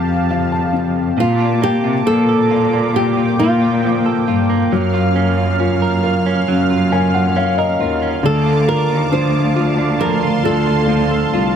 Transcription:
Already playing: F2 F3 C4 F4 G4 F5 A5
0.30 F3 F5
0.52 A5
0.73 C4
1.17 A#2 A#3 F4 A5 D6
1.40 F4
1.62 A#3 G4
1.84 C3 F4
2.06 A#2 F3 A#3 A4
2.29 A4
2.51 A#3 F4
2.73 A#3
2.94 A#2 A#3 G4 G5
3.17 F4
3.39 A#2 A#3 F4
3.62 F4
3.83 F3 A#3
4.06 A4
4.27 G2 A#3 F4
4.50 A#3
4.68 F#2 F5 F6
4.72 F#3
4.94 F4
5.15 C#4 A#4
5.38 F4
5.60 C#4 F4
5.82 A#4
6.03 F4 A#4
6.26 C#4
6.47 F#2 F#3 C#4
6.70 F4
6.92 C#4 A#4 G#5
7.14 F4 F#5
7.36 C#4 F5
7.58 A#4 D#5
7.80 D#2 F4 A#4
8.02 C#4
8.23 D2 D3 A4 F5 A5 D6
8.46 F4
8.67 D4 F4 A#4
8.90 D#2 F4
9.12 D2 F3 D4 C5
9.55 F4
9.79 D4
9.99 D3 F3 A#4 C6
10.23 F4
10.43 D2 D4 F4 A4
10.67 F4
10.87 F3 A3
11.11 A4
11.33 C2 F4

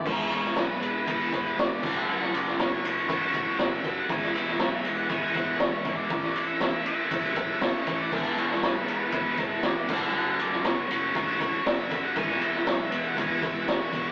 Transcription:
0.04 E1 E3 G#3 B3 E4 G#4 B4 E5 B5, kick, crash
0.19 snare
0.31 E1 B3 E4 G#4 C#5, ride
0.44 snare
0.56 B1 E3 G#3 B3 E4 G#4 B4, snare, ride
0.80 E1 B4, ride
1.07 E1 E3 B3 E4 G#4, kick, ride
1.32 E1 G#3 B3 E4 G#4, kick, ride
1.56 E1 E3 G#3 B3 E4 G#4 D5, snare, ride
1.81 F#1 F#3 A3 C#4 F#4 A4 C#5, kick, crash
1.85 F#5 C#6
1.98 E5
2.06 F#1 F#3 A3 C#4 F#4 F#5
2.21 snare
2.33 F#1 A3 C#4 F#4 D5, ride
2.48 snare
2.57 F#1 F#3 A3 C#4 F#4, snare, ride
2.61 C#5
2.84 F#1 C#5, ride
3.07 E1 F#3 A3 C#4 F#4, kick, ride
3.32 A3 C#4 F#4, kick, ride
3.56 F#1 F#3 A3 C#4 F#4, snare, ride
3.61 E5
3.82 F#1 A3 C#4 F#4, kick, ride
3.99 F#5
4.07 E1 E3 G#3 B3 E4 G#4 E5 G#5 B5 E6, kick, ride
4.22 snare
4.33 E1 G#3 B3 E4 E5, ride
4.48 snare
4.58 B1 E3 G#3 B3 E4 E5, snare, ride
4.85 E1, ride
4.97 F#5
5.08 E1 E3 G#3 B3 E4 G#5, kick, ride
5.34 E1 G#3 B3 E4 F#5, kick, ride
5.58 E1 E3 G#3 B3 E4 C#5, snare, ride
5.84 E1 G#3 B3 E4, kick, ride
5.96 D5
6.09 A1 A2 E3 A3 C#4 E4 A4 C#6, kick, ride
6.23 snare
6.35 A1 A3 C#4 E4, ride
6.48 E5
6.59 A1 A2 E3 A3 C#4 E4, snare, ride
6.86 A1 E5, ride
7.10 F#1 A2 E3 A3 C#4 E4, kick, ride
7.34 A3 C#4 E4, kick, ride
7.60 A1 E3 A3 C#4 E4 C#5, snare, ride
7.85 A1 A3 C#4 E4, kick, ride
8.01 D5
8.10 E1 E3 G#3 B3 E4 G#4 E5 B5, kick, crash
8.15 E5
8.36 E1 G#3 B3 E4 C#5, ride
8.51 snare
8.61 B1 E3 G#3 B3 E4, snare, ride
8.65 B4
8.87 E1 B4, ride
9.11 E1 E3 G#3 B3 E4, kick, ride
9.36 E1 G#3 B3 E4, kick, ride
9.46 A4
9.62 E1 E3 G#3 B3 E4 D5, snare, ride
9.88 F#1 F#3 A3 C#4 F#4 A4 C#5 F#5 C#6, kick, crash
10.03 E5
10.13 F#1 F#3 A3 C#4 F#4 F#5
10.38 F#1 A3 C#4 F#4 D5, ride
10.52 snare
10.63 F#1 F#3 A3 C#4 F#4 C#5, snare, ride
10.91 F#1 C#5, ride
11.13 E1 F#3 A3 C#4 F#4, kick, ride
11.39 A3 C#4 F#4, kick, ride
11.64 F#1 F#3 A3 C#4 F#4 E5, snare, ride
11.89 F#1 A3 C#4 F#4, kick, ride
12.05 F#5
12.14 E1 E3 G#3 B3 E4 B4 E5 G#5 E6, kick, ride
12.29 snare
12.40 E1 G#3 B3 E4 E5, ride
12.55 snare
12.65 B1 E3 G#3 B3 E4, snare, ride
12.69 E5
12.92 E1, ride
13.07 F#5
13.16 E1 E3 G#3 B3 E4 G#5, kick, ride
13.41 E1 G#3 B3 E4, kick, ride
13.46 E5
13.65 E1 E3 G#3, snare, ride
13.69 B3 E4 C#5
13.93 E1 G#3 B3 E4, kick, ride

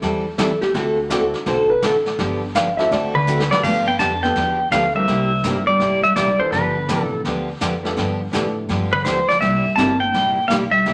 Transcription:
0.02 E2 E3 G3 C4 E4 A4, brush sweep, kick, snare
0.38 E3 G3 C4 E4 A4, kick, snare, hi-hat pedal
0.62 G4, snare
0.74 D2 D3 A3 C4 F#4 A4, brush sweep, kick, snare
1.09 D3 A3 C4 D4 E4 F#4 A4, kick, snare, hi-hat pedal
1.34 snare
1.46 B1 D3 A3 C4 F#4 A4 C5, brush sweep, kick, snare
1.70 B4
1.82 A1 D3 A3 C4 F#4 A4, kick, snare, hi-hat pedal
2.06 snare
2.19 G1 D3 F3 B3 D4 G4, brush sweep, kick, snare
2.55 D3 F3 B3 D4 G4 F5, kick, snare, hi-hat pedal
2.77 C4 D4 E4 F#4 A4 E5, snare
2.91 D2 D3 A3 C4 F#4 A4 D5, brush sweep, kick, snare
3.14 D3 B4
3.27 D3 A3 C4 F#4 A4, hi-hat pedal
3.40 snare
3.50 F#3 B3 D4 F4 G4 B4 D5, snare
3.63 G2 D3 F3 A3 B3 D4 G4 F5, brush sweep, kick, snare, crash
3.87 B3 G5
3.99 F2 D3 F3 B3 D4 G4 A5, kick, snare, hi-hat pedal
4.23 B3 D4 F4 G4 A4 G5, snare
4.35 E2 D3 F3 B3 D4 G4, brush sweep, kick, snare
4.71 D2 D3 F3 A3 B3 D4 G4 F5, kick, snare, hi-hat pedal
4.95 G3 C4 D4 E4 G4 A#4 E5
5.08 C2 C3 G3 A#3 E4 G4, brush sweep, kick, snare
5.43 G1 C3 G3 A#3 C4 D4 E4 G4 A#4, kick, snare, hi-hat pedal
5.67 G3 D5
5.80 A1 C3 G3 A#3 E4 G4, brush sweep, kick, snare
6.03 G3 E5
6.16 A#1 C3 G3 A#3 E4 G4 D5, kick, snare, hi-hat pedal
6.38 E3 B3 D4 F4 G4 A4 C5, muted upright bass stroke
6.52 G1 D3 F3 B3 D4 G4 B4, brush sweep, kick, snare
6.87 A1 D3 F3 B3 D4 F4 G4 A4, kick, snare, hi-hat pedal
7.03 C3 A4
7.25 D2 D3 F3 B3 D4 G4, brush sweep, kick, snare
7.61 F2 D3 F3 B3 D4 G4, kick, snare, hi-hat pedal
7.83 B3 D4 F4 G4 A4, snare
7.97 G2 D3 F3 B3 D4 G4, brush sweep, kick, snare
8.32 A2 D3 F3 B3 D4 F4 G4 A4, kick, snare, hi-hat pedal
8.69 G2 D3 F3 B3 D4 G4, brush sweep, kick, snare
8.93 D3 B4
9.05 D2 D3 F3 B3 D4 G4 C5, kick, snare, hi-hat pedal
9.28 F3 D5, snare
9.40 C2 C3 G3 A#3 E4 G4 E5, brush sweep, kick, snare
9.66 muted upright bass stroke
9.76 G1 C3 G3 A#3 C4 D4 E4 G4 A#4 A5, kick, snare, hi-hat pedal
9.99 A#3 G5
10.14 A#1 C3 G3 A#3 E4 G4, brush sweep, kick, snare
10.48 B1 C3 G3 A#3 E4 G4 F5, kick, snare, hi-hat pedal
10.71 G3 E5
10.86 C2 C3 G3 A#3 E4 G4, brush sweep, kick, snare

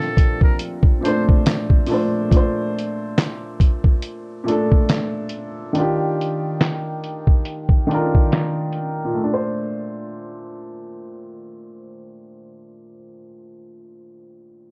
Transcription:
Already playing: A#2 F3 A3 C4 D4 G4 A4 C5
0.17 kick, closed hi-hat
0.41 A#4, kick
0.59 closed hi-hat
0.83 kick
1.01 A#2 A3 C5
1.05 D4 C5, closed hi-hat
1.29 kick
1.46 snare, clap, closed hi-hat
1.70 kick
1.86 A#2 A3, open hi-hat
1.91 D4 C5
2.29 A#2 A3, kick, closed hi-hat
2.34 D4 C5
2.79 closed hi-hat
3.18 snare, clap, closed hi-hat
3.60 kick, closed hi-hat
3.84 kick
4.02 closed hi-hat
4.44 A#2 A3
4.48 D4 A4, closed hi-hat
4.72 kick
4.89 snare, clap, closed hi-hat
5.29 closed hi-hat
5.73 D#3 D4, closed hi-hat
5.78 F4 G4
6.21 closed hi-hat
6.61 snare, clap, closed hi-hat
7.04 closed hi-hat
7.27 kick
7.45 closed hi-hat
7.69 kick
7.87 D#3 D4
7.91 F4 A#4, closed hi-hat
8.15 kick
8.32 snare, clap, closed hi-hat
8.73 closed hi-hat
9.04 A#2
9.14 A3
9.24 D4
9.34 C5

